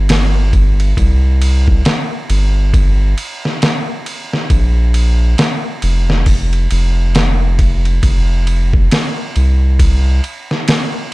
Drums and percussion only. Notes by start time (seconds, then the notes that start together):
0.09 snare, ride
0.53 kick, ride
0.80 ride
0.97 kick, ride
1.42 ride
1.68 kick
1.85 snare, ride
2.30 ride
2.74 kick, ride
3.18 ride
3.45 snare
3.62 snare, ride
4.06 ride
4.33 snare
4.50 kick, ride
4.94 ride
5.38 snare, ride
5.82 ride
6.10 snare
6.26 kick, open hi-hat
6.53 ride
6.71 ride
7.15 snare, ride
7.59 kick, ride
7.85 ride
8.03 kick, ride
8.47 ride
8.73 kick
8.91 snare, ride
9.36 ride
9.79 kick, ride
10.24 ride
10.51 snare
10.68 snare, ride